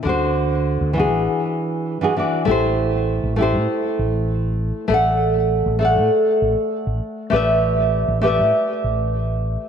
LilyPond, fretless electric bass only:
\new Staff \with { instrumentName = "Fretless electric bass" } { \clef bass \time 4/4 \key a \dorian \tempo 4 = 99 d,4~ d,16 d,8 a,,16 r2 | a,,4~ a,,16 a,,8 a,16 r8 a,,4~ a,,16 r16 | a,,4~ a,,16 a,,8 a,16 r8 a,,16 r8 a,,16 r8 | a,,4~ a,,16 a,,8 a,16 r8 a,,4~ a,,16 r16 | }